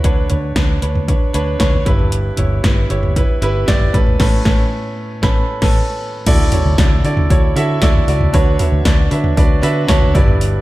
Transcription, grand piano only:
0.04 0.78 D3 medium
0.04 0.23 D4 loud
0.04 0.23 B4 medium
0.04 0.23 C#5 loud
0.29 0.48 D4 medium
0.29 0.49 B4 medium
0.29 0.49 C#5 medium
0.55 0.74 D4 medium
0.55 0.75 B4 medium
0.55 0.75 C#5 medium
0.81 1.00 D4 medium
0.81 1.01 B4 medium
0.81 1.01 C#5 medium
1.07 1.26 D4 medium
1.07 1.27 B4 medium
1.07 1.27 C#5 medium
1.33 1.52 D4 loud
1.33 1.53 B4 medium
1.33 1.53 C#5 loud
1.59 1.78 D4 loud
1.59 1.78 B4 medium
1.59 1.79 C#5 loud
1.85 2.60 G2 medium
1.85 2.27 E4 medium
1.85 2.28 G4 medium
1.85 2.28 B4 loud
2.37 2.56 E4 medium
2.37 2.56 G4 medium
2.37 2.57 C#5 medium
2.63 2.82 E4 medium
2.63 2.83 G4 medium
2.63 2.83 B4 medium
2.89 3.08 E4 medium
2.89 3.09 G4 medium
2.89 3.09 C#5 medium
3.16 3.35 E4 medium
3.16 3.35 G4 medium
3.16 3.35 B4 medium
3.42 3.60 E4 loud
3.42 3.61 G4 medium
3.42 3.61 B4 loud
3.66 3.86 E4 loud
3.66 3.86 G4 loud
3.66 3.87 D5 loud
3.93 4.18 A2 medium
3.93 4.18 C#4 medium
3.93 4.18 A4 medium
3.93 4.19 B4 loud
4.19 4.37 A2 loud
4.19 4.37 C#4 loud
4.19 4.37 A4 medium
4.19 4.38 B4 loud
4.45 4.63 C#4 medium
4.45 4.63 A4 medium
4.45 4.64 B4 medium
5.22 5.40 C#4 loud
5.22 5.41 A4 medium
5.22 5.41 B4 medium
5.22 5.41 B5 loud
5.62 5.80 C#4 medium
5.62 5.80 A4 loud
5.62 5.80 B4 medium
5.62 5.80 A5 medium
6.26 7.01 D3 medium
6.26 6.45 E4 loud
6.26 6.45 F#4 loud
6.26 6.45 A4 loud
6.26 6.46 D5 loud
6.52 6.71 E4 medium
6.52 6.71 F#4 medium
6.52 6.72 A4 medium
6.52 6.72 C#5 loud
6.78 6.97 E4 medium
6.78 6.97 F#4 medium
6.78 6.98 A4 medium
6.78 6.98 D5 medium
7.04 7.23 E4 medium
7.04 7.23 F#4 medium
7.04 7.23 A4 medium
7.04 7.24 D5 loud
7.30 7.49 E4 medium
7.30 7.49 F#4 medium
7.30 7.49 A4 medium
7.30 7.49 C#5 loud
7.56 7.75 E4 loud
7.56 7.75 F#4 loud
7.56 7.75 A4 loud
7.56 7.75 E5 loud
7.81 8.00 E4 loud
7.81 8.01 F#4 loud
7.81 8.01 A4 loud
7.81 8.01 D5 loud
8.07 8.26 E4 medium
8.07 8.26 F#4 medium
8.07 8.27 A4 medium
8.07 8.27 D5 loud
8.33 9.07 D3 medium
8.33 8.52 D4 loud
8.33 8.52 F#4 loud
8.33 8.53 B4 loud
8.33 8.53 C#5 loud
8.59 8.78 D4 medium
8.59 8.78 F#4 medium
8.59 8.78 B4 medium
8.59 8.78 E5 medium
8.84 9.03 D4 medium
8.84 9.04 F#4 medium
8.84 9.04 B4 medium
8.84 9.04 D5 medium
9.10 9.29 D4 medium
9.10 9.30 F#4 medium
9.10 9.30 B4 medium
9.10 9.30 E5 loud
9.36 9.55 D4 medium
9.36 9.55 F#4 medium
9.36 9.56 B4 medium
9.36 9.56 D5 loud
9.61 9.81 D4 loud
9.61 9.81 F#4 medium
9.61 9.81 B4 loud
9.61 9.82 E5 loud
9.87 10.07 D4 loud
9.87 10.07 F#4 medium
9.87 10.07 B4 medium
9.87 10.07 C#5 loud
10.14 10.61 G2 medium
10.14 10.56 E4 loud
10.14 10.56 G4 medium
10.14 10.56 B4 medium
10.14 10.56 D5 loud

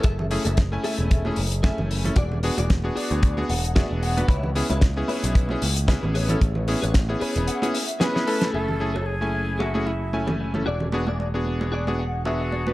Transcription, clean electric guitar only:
0.03 0.25 G#4 loud
0.03 0.25 A4 loud
0.03 0.26 E5 loud
0.45 0.57 G#4 medium
0.45 0.58 A4 medium
0.45 0.58 E5 medium
0.71 muted clean electric guitar stroke soft
0.84 1.25 G#4 medium
0.84 1.25 A4 medium
0.84 1.26 E5 medium
1.63 1.78 G#4 medium
1.63 1.78 A4 medium
1.63 1.79 E5 medium
1.90 muted clean electric guitar stroke soft
2.16 2.37 F#4 loud
2.16 2.37 G#4 loud
2.16 2.38 D5 loud
2.57 2.70 F#4 medium
2.57 2.70 G#4 medium
2.57 2.70 D5 loud
2.84 muted clean electric guitar stroke soft
2.96 3.37 F#4 medium
2.96 3.38 G#4 medium
2.96 3.38 D5 loud
3.50 3.74 F#5 medium
3.75 3.90 F#4 medium
3.75 3.91 G#4 medium
3.75 3.91 D5 loud
3.75 4.01 E5 medium
4.02 4.28 F#5 medium
4.02 muted clean electric guitar stroke soft
4.28 4.49 E4 loud
4.28 4.50 B4 loud
4.28 4.50 C#5 loud
4.70 4.82 E4 medium
4.70 4.83 B4 medium
4.70 4.83 C#5 medium
4.96 muted clean electric guitar stroke soft
5.08 5.50 E4 medium
5.08 5.50 B4 medium
5.08 5.51 C#5 loud
5.88 6.03 E4 medium
5.88 6.03 B4 medium
5.88 6.04 E5 medium
6.14 6.68 G#4 medium
6.14 6.68 B4 medium
6.14 6.69 C#5 loud
6.82 6.94 G#4 medium
6.82 6.95 B4 medium
6.82 6.95 C#5 loud
7.08 muted clean electric guitar stroke soft
7.21 7.62 G#4 medium
7.21 7.62 B4 medium
7.21 7.63 C#5 loud
7.47 7.72 F#5 medium
7.74 7.99 E5 medium
8.00 8.15 G#4 medium
8.00 8.15 B4 medium
8.00 8.16 C#5 medium
8.00 8.26 G#5 medium
8.27 8.52 A5 medium
8.27 muted clean electric guitar stroke soft
8.53 8.74 G#4 medium
8.53 8.75 A4 medium
8.53 8.75 E5 loud
8.94 9.14 G#4 medium
8.94 9.14 A4 medium
8.94 9.15 C#5 medium
9.33 muted clean electric guitar stroke soft
9.59 9.74 G#4 medium
9.59 9.75 A4 medium
9.59 9.75 E5 medium
9.86 muted clean electric guitar stroke soft
10.27 muted clean electric guitar stroke medium
10.39 muted clean electric guitar stroke soft
10.66 10.87 F#4 loud
10.66 10.87 G#4 medium
10.66 10.88 D5 loud
11.07 11.26 F#4 medium
11.07 11.27 G#4 medium
11.07 11.27 D5 medium
11.45 muted clean electric guitar stroke soft
11.72 11.87 F#4 medium
11.72 11.87 G#4 medium
11.72 11.88 D5 medium
11.99 12.24 F#5 medium
11.99 muted clean electric guitar stroke soft
12.26 12.51 E5 medium
12.40 muted clean electric guitar stroke medium
12.52 12.55 D5 medium
12.52 muted clean electric guitar stroke soft

